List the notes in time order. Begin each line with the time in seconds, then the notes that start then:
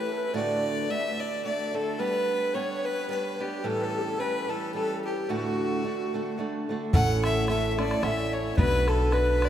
Already playing: E3 A3 C#4 E4 B4
0.00 B4
0.12 A4
0.17 B4
0.33 D2 A2 D3 A3 D4 F#4 D5
0.88 D3 A3 D4 F#4 E5
1.20 D5
1.44 D3 A3 D4 F#4 D5
1.74 D3 A3 D4 F#4 A4
1.99 G3 B3 D4 G4 B4
2.54 G3 B3 D4 G4 C#5
2.85 B4
3.09 G3 B3 D4 G4 B4
3.39 G3 B3 D4 G4
3.64 A2 E3 G3 C#4 G4 A4
3.82 A4 B4
3.99 G4 A4
4.18 E3 G3 C#4 G4 B4 C#5
4.23 B4
4.49 E3 G3 C#4 G4 A4
4.74 E3 G3 C#4 G4 A4
5.05 G4
5.29 D2 A2 D3 A3 D4 F#4
5.83 D3 A3 D4 F#4
6.14 D3 A3 D4 F#4
6.38 D3 A3 D4 F#4
6.69 D3 A3 D4 F#4
6.93 A1 A2 A3 C#4 E4 A4 F#5, bodhran
7.24 E5, bodhran
7.48 A3 C#4 E4 A4 E5, bodhran
7.71 E5
7.78 A3 C#4 E4 A4 D5, bodhran
7.91 bodhran
8.03 A1 A3 C#4 E4 A4 E5 F#5, bodhran
8.07 E5
8.33 C#5
8.56 B1 B3 D4 F#4 B4, bodhran
8.87 A4, bodhran
8.94 A4
9.00 A4
9.12 B3 D4 F#4 B4, bodhran
9.42 D5, bodhran